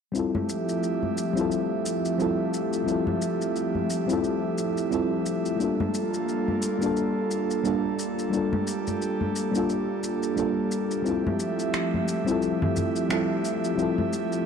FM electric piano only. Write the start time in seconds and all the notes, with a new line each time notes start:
0.12 G3 C4 E4
0.18 F4 A4
1.33 G3 C4 E4
1.39 F4 A4
2.18 G3 C4 E4 F4 A4
2.84 G3 C4 E4
2.90 F4 A4
4.06 G3 C4 E4
4.11 F4 A4
4.91 G3 C4 E4 F4 A4
5.56 G3 A#3 D4
5.62 F4 A4
6.79 G3 A#3 D4
6.84 F4 A4
7.63 G3 A#3 D4 F4 A4
8.30 G3 A#3 D4
8.35 F4 A4
9.51 G3 A#3 D4
9.57 F4 A4
10.36 G3 A#3 D4 F4
10.40 A4
11.02 G3 C4 E4
11.08 F4 A4
12.24 G3 C4 E4
12.30 F4 A4
13.09 G3 C4 E4 F4 A4
13.75 G3 C4 E4
13.81 F4 A4